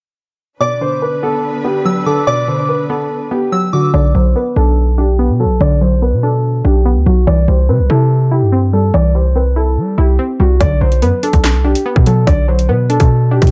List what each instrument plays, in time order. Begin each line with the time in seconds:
0.61 synth pluck B2, string section D3 B3 D4 B4, grand piano D5, synth bell D6
0.81 synth pluck D3, grand piano C5
1.02 grand piano B4
1.23 synth pluck B3, grand piano A4
1.65 synth pluck B3, grand piano G4
1.85 synth pluck F#3, synth bell E6
2.06 synth pluck D3, grand piano A4, synth bell D6
2.27 synth pluck B2, grand piano D5, synth bell D6
2.48 synth pluck D3, grand piano C5
2.69 grand piano B4
2.89 synth pluck B3, grand piano A4
3.31 synth pluck B3, grand piano G4
3.52 synth pluck F#3, synth bell E6
3.73 synth pluck D3, grand piano F#4, synth bell D6
3.94 808-style bass B1, synth pluck D3, grand piano D5
4.15 808-style bass B1, synth pluck F#3, grand piano C5
4.35 synth pluck B3, grand piano B4
4.56 808-style bass B1, synth pluck D4, grand piano A4
4.98 synth pluck D4, grand piano G4
5.19 synth pluck B3
5.29 808-style bass B2
5.40 synth pluck F#3, grand piano A4
5.45 808-style bass B1
5.61 808-style bass B1, synth pluck D3, grand piano D5
5.81 synth pluck F#3, grand piano C5
6.02 synth pluck B3, grand piano B4
6.13 808-style bass B2
6.23 synth pluck D4, grand piano A4
6.65 808-style bass B1, synth pluck D4, grand piano G4
6.86 synth pluck B3
6.96 808-style bass D2
7.06 808-style bass B1, synth pluck F#3, grand piano F#4
7.27 808-style bass C2, synth pluck E3, grand piano D5
7.48 808-style bass C2, synth pluck G3, grand piano C5
7.69 808-style bass C3, synth pluck C4, grand piano B4
7.79 808-style bass C2
7.90 808-style bass C3, synth pluck E4, grand piano A4
8.31 synth pluck E4, grand piano G4
8.42 808-style bass G2
8.52 synth pluck C4
8.73 synth pluck G3, grand piano A4
8.94 808-style bass C2, synth pluck E3, grand piano D5
9.15 synth pluck G3, grand piano C5
9.36 synth pluck C4, grand piano B4
9.56 synth pluck E4, grand piano A4
9.77 808-style bass G3
9.98 808-style bass C2, synth pluck E4, grand piano G4
10.19 synth pluck C4
10.40 808-style bass C2, synth pluck G3, grand piano F#4
10.60 808-style bass B1, synth pluck D3, grand piano D5, kick, closed hi-hat
10.81 808-style bass B1, synth pluck F#3, grand piano C5
10.92 closed hi-hat
11.02 808-style bass F#2, synth pluck B3, grand piano B4, closed hi-hat
11.23 synth pluck D4, grand piano A4, closed hi-hat
11.33 808-style bass B1, kick, closed hi-hat
11.44 snare, clap
11.54 808-style bass C2
11.65 808-style bass B1, synth pluck D4, grand piano G4
11.75 closed hi-hat
11.86 synth pluck B3
11.96 808-style bass B2, kick
12.06 synth pluck F#3, grand piano A4, closed hi-hat
12.27 808-style bass B1, synth pluck D3, grand piano D5, kick, closed hi-hat
12.48 synth pluck F#3, grand piano C5
12.59 closed hi-hat
12.69 808-style bass B2, synth pluck B3, grand piano B4
12.90 synth pluck D4, grand piano A4, closed hi-hat
13.00 808-style bass B2, kick, closed hi-hat
13.31 synth pluck D4, grand piano G4
13.42 808-style bass B2, kick, closed hi-hat
13.47 closed hi-hat